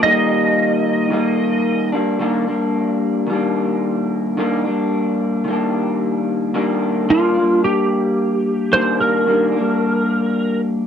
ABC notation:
X:1
M:4/4
L:1/8
Q:"Swing 16ths" 1/4=110
K:Eb
V:1 name="Electric slide guitar"
e6- e z | z8 | z8 | z2 F2 G4 |
c B6 z |]
V:2 name="Clean electric guitar"
[E,G,B,]4 [E,G,B,]3 [G,B,D] | [E,G,B,D] [G,B,D]3 [E,G,B,D]4 | [E,G,B,D] [G,B,D]3 [E,G,B,D]4 | [E,G,B,D]2 [E,G,B,D] [G,B,D]4- [G,B,D] |
[E,G,B,D]2 [E,G,B,D] [G,B,D]4- [G,B,D] |]